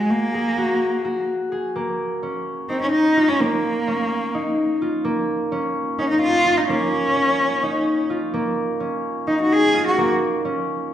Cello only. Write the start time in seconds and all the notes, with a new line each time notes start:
Already playing: G#3
0.10 A#3
2.69 C4
2.82 C#4
2.92 D#4
3.28 C#4
3.41 A#3
5.99 C#4
6.10 D#4
6.22 F4
6.57 D#4
6.69 C#4
9.28 D#4
9.41 F#4
9.53 G#4
9.88 F#4